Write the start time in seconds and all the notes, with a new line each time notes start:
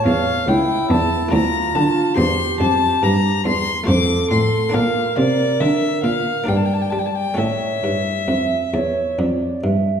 Already playing: A3 G4 C#5
0.05 E2 F5
0.47 C#2 E4 G5
0.90 E2 A5
1.29 D2 A3 F4 D5
1.33 D2 A#5
1.75 D3 A5
2.16 E2 G4 C5 C6
2.60 F2 A5
3.03 G2 A#5
3.45 E2 C6
3.84 A3 F4 A4 C5
3.88 F2 D6
4.31 A2 C6
4.69 A#3 D4 D5
4.74 A#2 A#4 F5
5.17 C3 D5
5.60 D3 E5
6.04 A#2 F5
6.44 A#3 D4 D5
6.48 G2 D5 G5
6.57 A5
6.66 G5
6.74 A5
6.82 G5
6.90 G3 A5
6.99 G5
7.06 A5
7.15 G5
7.34 A2 A3 C#4 A4 C#5 E5
7.39 A2
7.82 G2
8.28 F2 E5
8.74 E2 C#5
9.19 F2 D5
9.63 G2 E5